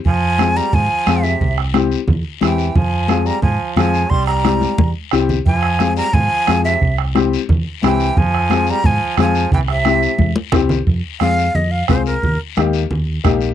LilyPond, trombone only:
\new Staff \with { instrumentName = "Trombone" } { \clef bass \time 4/4 \key f \minor \tempo 4 = 177 f4. g8 f4. c8~ | c8 r2 r8 e4 | f4. g8 f4 f4 | g8 g2 r4. |
f4. g8 f4. c8~ | c8 r2 r8 e4 | f4. g8 f4 f4 | e8 c2 r4. |
r1 | r1 | }